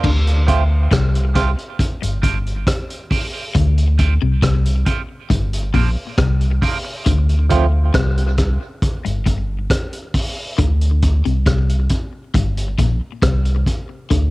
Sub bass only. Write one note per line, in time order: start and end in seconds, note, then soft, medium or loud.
0.04 0.88 D2 loud
0.92 1.55 C2 medium
2.04 2.23 G1 medium
2.24 2.65 G1 medium
3.56 4.18 D2 loud
4.23 4.42 C2 medium
4.43 4.84 C2 medium
5.31 5.72 G1 loud
5.75 5.96 A#1 loud
6.19 6.60 C2 loud
7.07 7.91 D2 loud
7.95 8.58 C2 medium
9.06 9.26 G1 loud
9.27 9.68 G1 medium
10.59 11.22 D2 loud
11.26 11.46 C2 medium
11.47 11.88 C2 loud
12.35 12.76 G1 loud
12.79 13.01 A#1 loud
13.23 13.65 C2 loud
14.12 14.30 D2 loud